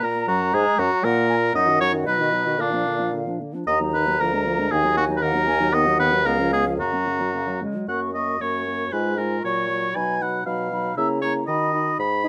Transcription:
Already playing: A#5
0.01 A#2 A#3 A#4
0.27 F#2 F#3 F#4
0.53 G#2 G#3 G#4
0.79 F#2 F#3 F#4
1.04 A#2 A#3 A#4 F#5
1.29 G#5
1.54 F#2 F#3 D#4 D#5 F#5
1.67 D#3 F#4
1.80 F#3 D#4 C#5
1.93 D#3 F#4
2.06 B2 F#3 D#4 B4 D#5
2.20 D#3 F#4
2.33 F#3 D#4
2.46 D#3 F#4
2.59 A#2 D3 A#3 D4 F5
2.72 F3 D4
2.86 D3 A#3
2.99 F3 D4
3.12 D3 A#3
3.27 F3 D4
3.40 D3 A#3
3.54 F3 D4
3.67 D#2 D#3 A#3 D#5 A#5
3.81 F#3 D#4
3.93 D#3 A#3 B4
4.06 F#3 D#4
4.20 D2 F3 A#3 A#4
4.33 G#3 D4
4.45 F3 A#3
4.59 G#3 D4
4.71 D#2 D#3 A#3 G#4 G#5
4.84 F#3 D#4
4.97 D#3 A#3 F#4
5.09 F#3 D#4
5.16 B4
5.22 D#3 A#3 A#4 F#5
5.34 F#3 D#4
5.47 D#3 A#3 G#5
5.60 F#3 D#4
5.72 D#3 B3 D#5 F#5
5.86 F#3 D#4
5.99 D#3 B3 B4
6.12 F#3 D#4
6.25 C#2 G#3 B3 A#4 F5
6.39 F3 C#4
6.53 G#3 B3 G#4
6.66 F3 C#4
6.78 F#2 C#3 A#3 F#4 A#5
6.93 F#3 C#4
7.06 C#3 A#3
7.20 F#3 C#4
7.34 C#3 A#3
7.48 F#3
7.62 C#3 G#3
7.76 F#3
7.88 F#2 A#3 F#4 F#5 C#6
8.14 A#3 F#4 D#5 C#6
8.40 F#2 A#3 F#4 C#5 C#6
8.67 A#3 F#4 C#6
8.92 G#2 G#3 F4 B4 G#5
9.18 G#3 F4 A#4 G#5
9.44 A#2 F#3 F#4 C#5 C#6
9.69 F#3 F#4 C#6
9.95 B2 F#3 D#4 G#5 B5
10.20 F#3 D#4 F#5 B5
10.46 B2 F#3 D#4 F5 B5
10.72 F#3 D#4 B5
10.97 C#3 A#3 E4 E5 A#5
11.22 A#3 E4 C#5 A#5
11.47 D#3 D#4 F#4 D#5 B5
11.74 D#4 F#4 B5
11.99 G#2 B5
12.24 D#4 G#4 B5

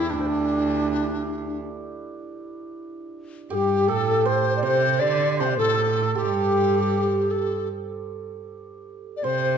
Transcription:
Already playing: E2 D4 E4 G4 A4
0.04 E4
0.10 D2 D4
0.20 C5
0.27 D4
3.50 G2 G4 A4
3.55 G4
3.88 A2 A4
4.25 C5
4.56 D5
4.63 C3 C5
4.99 D3 D5
5.38 C3 C5 A5 C6
5.44 E5 G5
5.51 D5
5.55 A2 A4 C5
5.60 A4
5.66 A4
5.74 A4
5.80 A4
5.86 A4
5.95 A4
6.02 A4
6.15 G2 G4
7.31 A4
9.16 D5
9.24 C3 C5

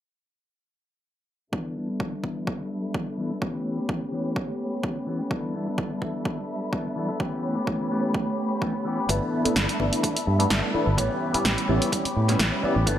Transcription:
1.52 E3 G3 B3 D4 A4 E5 B5, kick
1.75 E3 B3 D4 A4
1.88 B3 A4
1.99 E3 B3 D4 A4, kick
2.12 B3 D4 A4
2.23 E3 B3 D4 A4, kick
2.47 kick
2.59 B3 D4 A4
2.94 E3 B3 D4 A4, kick
3.06 B3 D4 A4
3.18 E3 B3 D4 A4
3.30 B3 D4 A4
3.41 E3 A3 B3 C#4 G4 C#5, kick
3.77 B3 C#4 G4
3.89 E3 B3 C#4 G4, kick
4.01 B3 C#4 G4
4.12 E3 B3 C#4 G4
4.36 kick
4.48 B3 C#4 G4
4.83 E3 B3 C#4 G4, kick
4.95 B3 C#4 G4
5.07 E3 B3 C#4 G4
5.19 B3 C#4 G4
5.31 E3 G3 B3 D4 A4 E5 B5, kick
5.54 E3 B3 D4 A4
5.67 B3 D4 A4
5.78 E3 B3 D4 A4, kick
5.90 B3 D4 A4
6.01 E3 B3 D4 A4, kick
6.25 kick
6.37 B3 D4 A4
6.73 E3 B3 D4 A4, kick
6.85 B3 D4 A4
6.96 E3 B3 D4 A4
7.08 B3 D4 A4
7.20 E3 A3 B3 C#4 G4 C#5, kick
7.55 B3 C#4 G4
7.67 E3 B3 C#4 G4, kick
7.90 E3 B3 C#4 G4
8.14 kick
8.26 B3 C#4 G4
8.61 E3 B3 C#4 G4, kick
8.74 B3 C#4 G4
8.85 E3 B3 C#4 G4
8.97 B3 C#4 G4
9.08 G1 E3 A3 B3 D4 E4 A4 E5, kick, closed hi-hat
9.32 tambourine
9.44 A3 B3 D4 E4 A4, muted fingered electric bass stroke, closed hi-hat
9.56 G1 E3 B3 D4 A4, kick, snare, closed hi-hat
9.68 B3 D4 A4, closed hi-hat
9.79 G1 E3 A3 B3 D4 E4 A4, kick
9.93 closed hi-hat
10.03 A3 B3 D4 E4, kick, closed hi-hat
10.15 B3 D4 A4, closed hi-hat
10.27 G2, tambourine
10.39 A3 B3 D4 E4, closed hi-hat
10.50 G1 E3 B3 D4 A4, kick, snare, closed hi-hat
10.62 B3 D4 A4
10.73 E3 A3 B3 D4 E4 A4, muted fingered electric bass stroke
10.86 G1 B3 D4 A4
10.97 A1 E3 G3 B3 C#4 E4 G4 C#5, kick, closed hi-hat
11.21 tambourine
11.33 G3 B3 C#4 E4 G4, muted fingered electric bass stroke, closed hi-hat
11.44 A1 E3 B3 C#4 G4, kick, snare, closed hi-hat
11.58 closed hi-hat
11.68 A1 E3 G3 B3 C#4 E4 G4
11.82 closed hi-hat
11.92 G3 B3 C#4 E4, kick, closed hi-hat
12.04 B3 C#4 G4, muted fingered electric bass stroke, closed hi-hat
12.16 A2, tambourine
12.28 G3 B3 C#4 E4, snare, closed hi-hat
12.39 A1 E3 B3 C#4 G4, kick, snare, closed hi-hat
12.51 B3 C#4 G4
12.62 E3 G3 B3 C#4 E4 G4, muted fingered electric bass stroke, tambourine
12.75 A1 B3 C#4 G4, tambourine
12.86 G1 E3 A3 B3 D4 E4 A4 E5, kick, closed hi-hat

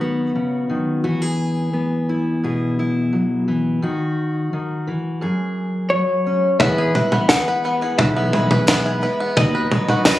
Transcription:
Already playing: D#3 F#3 F#4
0.01 B3
0.35 C#3
0.70 D#3
1.04 E3 F#4
1.22 G#4
1.73 B3
2.09 E4
2.44 B2 G#4
2.79 E4
3.13 F#3
3.48 E3
3.82 D#3 F#4
4.53 D#3
4.87 E3
5.21 F#2 G#4
5.90 F#3 C#5
6.27 C#4
6.60 E2 E3 G#3 B3 E4 B4 E5, kick, floor tom
6.78 G#4
6.94 G#3 B3 E4 B4, floor tom
7.11 B3 E4 B4, floor tom
7.29 E3 G#3 B3 E4 G#4 B4 F#5, kick, snare, clap, tambourine
7.47 B3 E4 B4
7.64 G#3 B3 E4 B4
7.81 B3 E4 G#4 B4
7.98 B1 B4 E5, kick, floor tom
8.16 B3
8.33 G#3 B3 E4 G#4 B4, floor tom
8.50 B3 E4 B4, floor tom
8.68 E3 G#3 B3 E4 B4, kick, snare, clap, tambourine
8.86 G#4
9.01 G#3 B3 E4 B4
9.20 B3
9.37 D#2 D#3 F#3 B3 D#4 B4 D#5, kick, floor tom
9.55 B4
9.71 F#3 B3 D#4 B4, floor tom
9.89 B3 D#4 F#4 B4, floor tom
10.05 D#3 F#3 B3 D#4 B4 D#5, kick, snare, clap, tambourine

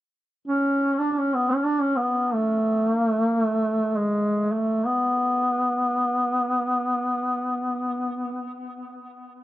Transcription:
0.47 C#4
0.99 D4
1.12 D4
1.18 C#4
1.35 B3
1.50 C#4
1.64 D4
1.80 C#4
1.97 B3
2.34 A3
2.92 A#3
3.08 A3
3.25 A#3
3.40 A3
3.96 G#3
4.51 A3
4.86 B3

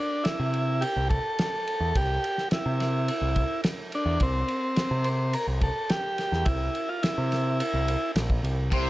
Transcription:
Already playing: D4
0.24 E4, snare, ride
0.40 C3
0.54 ride
0.81 G4, ride
0.96 C2
1.10 A4, kick, ride
1.39 snare, ride
1.67 ride
1.80 E2
1.95 C2 G4, kick, ride
2.24 ride
2.38 snare
2.51 E4, snare, ride
2.66 C3
2.80 snare, ride
3.08 ride
3.22 C2
3.36 kick, ride
3.64 snare, ride
3.92 D4, ride
4.06 E2
4.20 C2 C4, kick, ride
4.48 ride
4.76 snare, ride
4.91 C3
5.04 C5, ride
5.33 A#4, ride
5.47 C2
5.61 A4, kick, ride
5.89 G4, snare, ride
6.18 snare, ride
6.32 E2, snare
6.45 C2 E4, kick, ride
6.75 ride
6.89 F4
7.03 E4, snare, ride
7.18 C3
7.32 snare, ride
7.60 ride
7.74 C2
7.88 ride
8.16 A#1, snare, ride
8.30 kick
8.43 C2, ride
8.71 C2 C3 E4 G4 C5 E5, kick, ride

